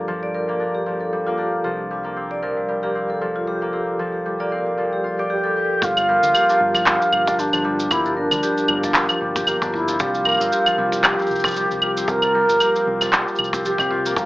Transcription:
Already playing: G1 G3 A#3 D4 F4 G4 A4 A#4 D5
0.08 F3
0.23 D5
0.34 G3 A#4
0.48 G3 A#3
0.60 D4
0.75 G4
0.86 F3
1.01 A4
1.13 G3
1.27 A#3 F4
1.38 D4 G4
1.64 C2 F3 G4
1.91 G3
2.04 A#3
2.16 C4
2.31 D5
2.42 F3 A#4
2.57 G3
2.68 G3
2.83 A#3 G4
2.95 C4
3.10 A4
3.21 F3
3.36 F4
3.47 G3 G4
3.62 A#3
3.73 C4 G4
3.99 F3
4.26 G3
4.40 A#3 D5
4.52 C4 A#4
4.67 G3
4.78 F3
4.93 G4
5.04 F4
5.19 G4 D5
5.30 G4
5.44 G3 A4
5.56 G4 A#4
5.82 G1 F4 G4, kick, shaker
5.97 F3, claves, shaker
6.08 G3 A#4
6.23 D2, shaker
6.34 A#3 G4, claves, shaker
6.49 D4, shaker
6.59 G1 F4
6.75 F3, kick, claves, shaker
6.86 G3 F4, clap, shaker
7.02 shaker
7.12 G1 A#3, claves
7.26 D4 G4, kick, shaker
7.39 D4 G4, shaker
7.53 G1 F3, claves, shaker
7.64 G3 F4
7.80 shaker
7.90 G1 A#3 E4 G4, kick, claves, shaker
8.05 D4, shaker
8.17 D4 A#4
8.31 D2 F3, claves, shaker
8.43 G3 G4, shaker
8.58 shaker
8.68 G1 A#3 F4, claves
8.83 D4, kick, shaker
8.94 clap, shaker
9.09 F3, claves, shaker
9.21 G1 G3
9.36 G4, kick, shaker
9.47 A#3 G4, claves, shaker
9.61 G1 D4, kick, shaker
9.73 E4 F4, kick
9.88 F3, shaker
9.99 C2 G3 F4 G4, kick, shaker
10.14 shaker
10.25 A#3 A#4, claves
10.29 claves
10.31 claves
10.34 claves
10.37 G1 C4, claves, shaker
10.52 G4, shaker
10.66 F3, claves, shaker
10.77 C2 G3 F4
10.92 kick, shaker
11.04 A#3 G4, clap, claves, shaker
11.19 C4, shaker
11.21 shaker
11.27 C2, shaker
11.30 shaker
11.35 shaker
11.39 shaker
11.44 F3 G4, kick, claves, shaker
11.48 shaker
11.51 shaker
11.54 shaker
11.56 G3 G4, shaker
11.71 C2, shaker
11.82 A#3 F4, claves
11.97 C4, shaker
12.08 C2 G4 A#4, kick, shaker
12.22 F3, claves, shaker
12.34 G3 A#4
12.49 G1, shaker
12.60 A#3 G4, claves, shaker
12.76 C4, shaker
12.87 C2 F4
13.01 F3, kick, claves, shaker
13.13 G3, clap, shaker
13.28 shaker
13.35 C2, claves, shaker
13.44 shaker
13.53 C4 G4, kick, shaker
13.65 F3 G4, shaker
13.78 C2 C4, kick, claves, shaker
13.91 F4, kick
14.06 A#3, shaker
14.16 G1 A#3 F4 G4, kick, shaker

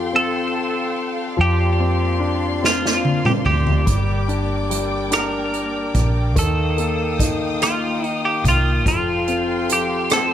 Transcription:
Already playing: F2 F3 C4 F4 G4 A4 F5 G5 C6
0.13 C4 A4
0.97 C2
1.37 F2 F3 A#3 D5 C6
1.41 G4
1.80 C4
2.20 D4
2.62 C4 F4, snare
2.86 snare
3.05 high tom
3.25 G4, mid tom
3.45 D2 G4, mid tom
3.67 floor tom
3.86 G1 G3 G5 D6, kick, closed hi-hat
4.28 D4, closed hi-hat
4.70 G3, closed hi-hat
5.11 D4 A#4, cross-stick, closed hi-hat
5.54 closed hi-hat
5.94 A#1, kick, closed hi-hat
6.36 D#2 D#3 A4 F5 G5 D#6, kick, closed hi-hat
6.78 A#3, closed hi-hat
7.20 D#4, kick, closed hi-hat
7.62 A#3 F4, cross-stick, closed hi-hat
8.04 D#4, closed hi-hat
8.25 G4
8.44 C2, kick, closed hi-hat
8.49 F4
8.86 F1 F3 F4 A4 F5 G5 C6, kick, closed hi-hat
9.28 C4, closed hi-hat
9.69 F3 G4, closed hi-hat
10.10 C4 A4, cross-stick, closed hi-hat

